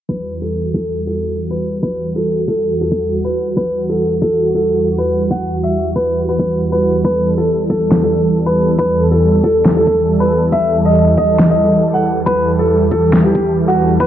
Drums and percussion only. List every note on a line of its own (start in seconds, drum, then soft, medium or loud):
0.09 kick loud
0.74 kick loud
1.83 kick loud
2.48 kick medium
2.92 kick loud
3.57 kick loud
4.22 kick loud
5.31 kick loud
5.96 kick medium
6.39 kick loud
7.05 kick loud
7.70 kick loud
7.92 snare loud
8.78 kick loud
9.44 kick medium
9.65 snare loud
9.87 kick medium
10.52 kick loud
11.18 kick loud
11.39 snare loud
12.26 kick loud
12.91 kick medium
13.13 snare loud
13.35 kick loud
14.00 kick loud